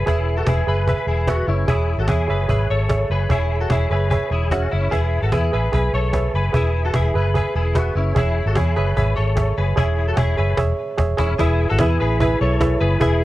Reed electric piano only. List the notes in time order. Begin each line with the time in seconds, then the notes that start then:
Already playing: G#4 B4 C#5 E5
0.06 G#4 B4 E5
0.47 G#4 B4 E5
0.67 G#4 B4 E5
0.87 G#4 B4 E5
1.27 G#4 B4 E5
1.68 G#4 C#5 E5
2.08 G#4 C#5 E5
2.28 G#4 C#5 E5
2.48 G#4 C#5 E5
2.89 G#4 C#5 E5
3.30 G#4 C#5 E5
3.70 G#4 C#5 E5
3.90 G#4 C#5 E5
4.11 G#4 C#5 E5
4.51 G#4 C#5 E5
4.91 G#4 B4 E5
5.32 G#4 B4 E5
5.52 G#4 B4 E5
5.73 G#4 B4 E5
6.13 G#4 B4 E5
6.53 G#4 B4 E5
6.93 G#4 B4 E5
7.14 G#4 B4 E5
7.34 G#4 B4 E5
7.75 G#4 B4 E5
8.15 G#4 C#5 E5
8.56 G#4 C#5 E5
8.77 G#4 C#5 E5
8.97 G#4 C#5 E5
9.36 G#4 C#5 E5
9.76 G#4 C#5 E5
10.17 G#4 C#5 E5
10.38 G#4 C#5 E5
10.57 G#4 C#5 E5
10.98 G#4 C#5 E5
11.17 G#4 C#5 E5
11.39 E4 G#4 B4 E5
11.80 E4 G#4 B4 E5
12.20 E4 G#4 B4 E5
12.61 E4 G#4 B4 E5
13.00 E4 G#4 B4 E5